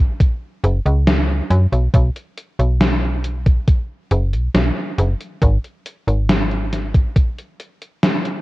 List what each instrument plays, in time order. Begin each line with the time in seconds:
Already playing: fm bass G#1
0.20 kick, closed hi-hat
0.63 fm bass F#1, closed hi-hat
0.85 fm bass C#2, closed hi-hat
1.07 snare, closed hi-hat
1.50 fm bass F#2, closed hi-hat
1.72 fm bass B1, closed hi-hat
1.94 fm bass B1, kick, closed hi-hat
2.16 closed hi-hat
2.38 closed hi-hat
2.59 fm bass B1, closed hi-hat
2.81 snare, closed hi-hat
3.24 closed hi-hat
3.46 kick, closed hi-hat
3.68 kick, closed hi-hat
4.11 fm bass F#1, closed hi-hat
4.33 fm bass B1, closed hi-hat
4.55 fm bass B1, snare, closed hi-hat
4.98 fm bass F#1, closed hi-hat
5.21 closed hi-hat
5.42 fm bass G#1, kick, closed hi-hat
5.64 closed hi-hat
5.86 closed hi-hat
6.07 fm bass G#1, closed hi-hat
6.29 snare, closed hi-hat
6.51 closed hi-hat
6.73 snare, closed hi-hat
6.94 kick, closed hi-hat
7.16 kick, closed hi-hat
7.38 closed hi-hat
7.60 closed hi-hat
7.82 closed hi-hat
8.03 snare, closed hi-hat
8.25 closed hi-hat